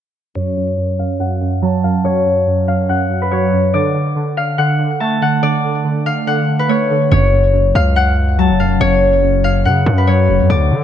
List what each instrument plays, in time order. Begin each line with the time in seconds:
0.35 synth keys F#2, harp C#5
0.57 synth keys F#2
0.77 synth keys F#2
0.99 synth keys F#2, harp F5
1.20 synth keys F#2, harp F#5
1.41 synth keys F#2
1.62 synth keys F#3, harp A5
1.84 synth keys F#2, harp F5
2.04 synth keys F#2, harp C#5
2.25 synth keys F#2
2.47 synth keys F#2
2.68 synth keys F#2, harp F5
2.89 synth keys F#2, harp F#5
3.10 synth keys F#2
3.22 harp B4
3.31 synth keys F#3, harp C#5
3.53 synth keys F#2
3.74 synth keys D3, harp D5
3.94 synth keys D3
4.16 synth keys D3
4.37 synth keys D3, harp F5
4.58 synth keys D3, harp F#5
4.79 synth keys D3
5.00 synth keys A3, harp A5
5.22 synth keys D3, harp F#5
5.43 synth keys D3, harp D5
5.64 synth keys D3
5.84 synth keys D3
6.06 synth keys D3, harp F5
6.27 synth keys D3, harp F#5
6.49 synth keys D3
6.59 harp B4
6.69 synth keys A3, harp C#5
6.91 synth keys D3
7.11 808-style bass F#1, synth keys F#2, harp C#5
7.33 synth keys F#2
7.53 synth keys F#2
7.75 808-style bass C#2, harp F5
7.96 harp F#5
8.38 synth keys F#3, harp A5
8.50 808-style bass F1
8.60 synth keys F#2, harp F5
8.80 808-style bass F#1, synth keys F#2, harp C#5
9.01 synth keys F#2
9.23 synth keys F#2
9.44 synth keys F#2, harp F5
9.65 synth keys F#2, 808-style bass C#3, harp F#5
9.86 synth keys F#2, 808-style bass F#2
9.98 harp B4
10.07 synth keys F#3, harp C#5
10.29 808-style bass F1, synth keys F#2
10.40 808-style bass F#2
10.50 808-style bass D2, synth keys D3, harp D5
10.71 synth keys D3, 808-style bass D3